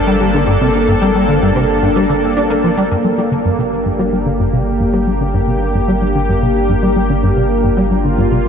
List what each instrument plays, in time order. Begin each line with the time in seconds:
Already playing: sub bass G1, analog synth pad A#3 D4 A4, synth texture C4 G4
0.07 analog synth bass G3
0.20 analog synth bass G3
0.34 analog synth bass D3
0.47 analog synth bass G2
0.61 analog synth bass C3
0.88 analog synth bass G2
1.02 analog synth bass G3
1.15 analog synth bass G3
1.29 analog synth bass D3
1.42 analog synth bass G2
1.56 analog synth bass C3
1.83 analog synth bass G2
1.96 analog synth bass G3
2.10 analog synth bass D3
2.37 analog synth bass D4
2.50 analog synth bass A#3
2.64 analog synth bass F3
2.77 analog synth bass G3
2.91 sub bass G1, analog synth bass G2, analog synth pad A#3
3.04 analog synth bass G3
3.18 analog synth bass G3
3.31 analog synth bass D3
3.42 analog synth bass G2, analog synth pad D4
3.52 analog synth pad G4
3.58 analog synth bass C3
3.86 analog synth bass G2
3.99 analog synth bass G3
4.13 analog synth bass G3
4.26 analog synth bass D3
4.39 analog synth bass G2
4.53 analog synth bass C3
4.80 analog synth bass G2
4.93 analog synth bass G3
5.07 analog synth bass G3
5.20 analog synth bass D3
5.34 analog synth bass G2
5.47 analog synth bass C3
5.75 analog synth bass G2
5.88 analog synth bass G3
6.02 analog synth bass G3
6.15 analog synth bass D3
6.29 analog synth bass G2
6.42 analog synth bass C3
6.69 analog synth bass G2
6.83 analog synth bass G3
6.96 analog synth bass G3
7.10 analog synth bass D3
7.23 analog synth bass G2
7.37 analog synth bass C3
7.64 analog synth bass G2
7.77 analog synth bass G3
7.85 analog synth pad F4
7.91 analog synth bass G3
8.04 analog synth bass D3
8.18 analog synth bass G2
8.31 analog synth bass C3